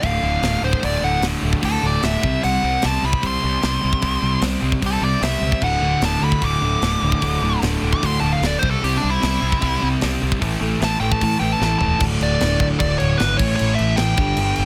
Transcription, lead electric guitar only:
0, 0, Header, 1, 2, 480
1, 0, Start_track
1, 0, Tempo, 399467
1, 1000, Time_signature, 4, 2, 24, 8
1, 12522, Tempo, 395517
1, 17655, End_track
2, 0, Start_track
2, 0, Title_t, "Lead electric guitar"
2, 0, Program_c, 0, 29
2, 61, Note_on_c, 0, 77, 92
2, 748, Note_off_c, 0, 77, 0
2, 773, Note_on_c, 0, 72, 83
2, 999, Note_off_c, 0, 72, 0
2, 1023, Note_on_c, 0, 74, 82
2, 1244, Note_off_c, 0, 74, 0
2, 1249, Note_on_c, 0, 78, 92
2, 1477, Note_off_c, 0, 78, 0
2, 1983, Note_on_c, 0, 69, 102
2, 2203, Note_off_c, 0, 69, 0
2, 2242, Note_on_c, 0, 74, 88
2, 2453, Note_off_c, 0, 74, 0
2, 2458, Note_on_c, 0, 76, 86
2, 2914, Note_off_c, 0, 76, 0
2, 2932, Note_on_c, 0, 78, 89
2, 3390, Note_off_c, 0, 78, 0
2, 3436, Note_on_c, 0, 81, 93
2, 3650, Note_off_c, 0, 81, 0
2, 3677, Note_on_c, 0, 83, 86
2, 3891, Note_off_c, 0, 83, 0
2, 3926, Note_on_c, 0, 84, 94
2, 5301, Note_off_c, 0, 84, 0
2, 5841, Note_on_c, 0, 69, 89
2, 6054, Note_off_c, 0, 69, 0
2, 6061, Note_on_c, 0, 74, 87
2, 6284, Note_off_c, 0, 74, 0
2, 6292, Note_on_c, 0, 76, 83
2, 6752, Note_off_c, 0, 76, 0
2, 6773, Note_on_c, 0, 78, 96
2, 7233, Note_off_c, 0, 78, 0
2, 7269, Note_on_c, 0, 81, 88
2, 7488, Note_off_c, 0, 81, 0
2, 7497, Note_on_c, 0, 83, 87
2, 7722, Note_off_c, 0, 83, 0
2, 7752, Note_on_c, 0, 86, 104
2, 9135, Note_off_c, 0, 86, 0
2, 9526, Note_on_c, 0, 86, 105
2, 9660, Note_off_c, 0, 86, 0
2, 9685, Note_on_c, 0, 84, 101
2, 9819, Note_off_c, 0, 84, 0
2, 9851, Note_on_c, 0, 81, 83
2, 9983, Note_off_c, 0, 81, 0
2, 10002, Note_on_c, 0, 77, 92
2, 10166, Note_off_c, 0, 77, 0
2, 10166, Note_on_c, 0, 74, 95
2, 10300, Note_off_c, 0, 74, 0
2, 10324, Note_on_c, 0, 72, 96
2, 10457, Note_off_c, 0, 72, 0
2, 10461, Note_on_c, 0, 69, 92
2, 10621, Note_off_c, 0, 69, 0
2, 10621, Note_on_c, 0, 67, 87
2, 10767, Note_off_c, 0, 67, 0
2, 10780, Note_on_c, 0, 62, 86
2, 10938, Note_off_c, 0, 62, 0
2, 10938, Note_on_c, 0, 64, 101
2, 11859, Note_off_c, 0, 64, 0
2, 13030, Note_on_c, 0, 81, 102
2, 13172, Note_off_c, 0, 81, 0
2, 13223, Note_on_c, 0, 79, 86
2, 13366, Note_off_c, 0, 79, 0
2, 13366, Note_on_c, 0, 81, 86
2, 13500, Note_off_c, 0, 81, 0
2, 13515, Note_on_c, 0, 81, 88
2, 13655, Note_off_c, 0, 81, 0
2, 13706, Note_on_c, 0, 79, 84
2, 13861, Note_off_c, 0, 79, 0
2, 13861, Note_on_c, 0, 81, 92
2, 13989, Note_off_c, 0, 81, 0
2, 14004, Note_on_c, 0, 81, 84
2, 14140, Note_off_c, 0, 81, 0
2, 14177, Note_on_c, 0, 81, 98
2, 14463, Note_off_c, 0, 81, 0
2, 14713, Note_on_c, 0, 74, 96
2, 15160, Note_off_c, 0, 74, 0
2, 15175, Note_on_c, 0, 74, 92
2, 15238, Note_off_c, 0, 74, 0
2, 15403, Note_on_c, 0, 74, 100
2, 15627, Note_off_c, 0, 74, 0
2, 15632, Note_on_c, 0, 73, 94
2, 15865, Note_on_c, 0, 71, 86
2, 15886, Note_off_c, 0, 73, 0
2, 16097, Note_off_c, 0, 71, 0
2, 16101, Note_on_c, 0, 73, 100
2, 16314, Note_off_c, 0, 73, 0
2, 16329, Note_on_c, 0, 73, 99
2, 16560, Note_off_c, 0, 73, 0
2, 16564, Note_on_c, 0, 76, 101
2, 16818, Note_on_c, 0, 79, 94
2, 16830, Note_off_c, 0, 76, 0
2, 17655, Note_off_c, 0, 79, 0
2, 17655, End_track
0, 0, End_of_file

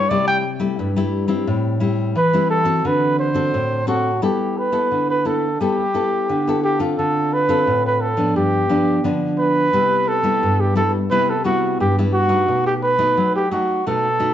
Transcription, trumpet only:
0, 0, Header, 1, 2, 480
1, 0, Start_track
1, 0, Key_signature, 1, "major"
1, 0, Tempo, 688073
1, 1032, Time_signature, 4, 2, 24, 8
1, 10002, End_track
2, 0, Start_track
2, 0, Title_t, "Trumpet"
2, 0, Program_c, 0, 56
2, 0, Note_on_c, 0, 73, 89
2, 64, Note_on_c, 0, 74, 92
2, 74, Note_off_c, 0, 73, 0
2, 188, Note_off_c, 0, 74, 0
2, 193, Note_on_c, 0, 79, 97
2, 265, Note_off_c, 0, 79, 0
2, 1517, Note_on_c, 0, 71, 92
2, 1738, Note_off_c, 0, 71, 0
2, 1747, Note_on_c, 0, 69, 91
2, 2004, Note_on_c, 0, 71, 82
2, 2015, Note_off_c, 0, 69, 0
2, 2227, Note_off_c, 0, 71, 0
2, 2231, Note_on_c, 0, 72, 93
2, 2683, Note_off_c, 0, 72, 0
2, 2709, Note_on_c, 0, 66, 82
2, 2933, Note_off_c, 0, 66, 0
2, 2958, Note_on_c, 0, 67, 71
2, 3192, Note_on_c, 0, 71, 81
2, 3203, Note_off_c, 0, 67, 0
2, 3551, Note_off_c, 0, 71, 0
2, 3562, Note_on_c, 0, 71, 77
2, 3671, Note_on_c, 0, 69, 72
2, 3681, Note_off_c, 0, 71, 0
2, 3908, Note_off_c, 0, 69, 0
2, 3912, Note_on_c, 0, 67, 78
2, 4603, Note_off_c, 0, 67, 0
2, 4632, Note_on_c, 0, 67, 78
2, 4739, Note_off_c, 0, 67, 0
2, 4872, Note_on_c, 0, 69, 82
2, 5116, Note_on_c, 0, 71, 83
2, 5127, Note_off_c, 0, 69, 0
2, 5473, Note_off_c, 0, 71, 0
2, 5485, Note_on_c, 0, 71, 77
2, 5590, Note_on_c, 0, 69, 76
2, 5601, Note_off_c, 0, 71, 0
2, 5830, Note_off_c, 0, 69, 0
2, 5835, Note_on_c, 0, 67, 85
2, 6337, Note_off_c, 0, 67, 0
2, 6548, Note_on_c, 0, 71, 93
2, 7033, Note_on_c, 0, 69, 90
2, 7043, Note_off_c, 0, 71, 0
2, 7398, Note_on_c, 0, 67, 77
2, 7409, Note_off_c, 0, 69, 0
2, 7509, Note_off_c, 0, 67, 0
2, 7513, Note_on_c, 0, 69, 77
2, 7620, Note_off_c, 0, 69, 0
2, 7749, Note_on_c, 0, 71, 95
2, 7883, Note_on_c, 0, 69, 82
2, 7893, Note_off_c, 0, 71, 0
2, 7985, Note_off_c, 0, 69, 0
2, 7990, Note_on_c, 0, 66, 80
2, 8213, Note_off_c, 0, 66, 0
2, 8236, Note_on_c, 0, 67, 77
2, 8343, Note_off_c, 0, 67, 0
2, 8465, Note_on_c, 0, 66, 90
2, 8802, Note_off_c, 0, 66, 0
2, 8838, Note_on_c, 0, 67, 84
2, 8890, Note_off_c, 0, 67, 0
2, 8951, Note_on_c, 0, 71, 93
2, 9286, Note_off_c, 0, 71, 0
2, 9317, Note_on_c, 0, 67, 82
2, 9426, Note_off_c, 0, 67, 0
2, 9429, Note_on_c, 0, 66, 78
2, 9653, Note_off_c, 0, 66, 0
2, 9677, Note_on_c, 0, 69, 91
2, 10002, Note_off_c, 0, 69, 0
2, 10002, End_track
0, 0, End_of_file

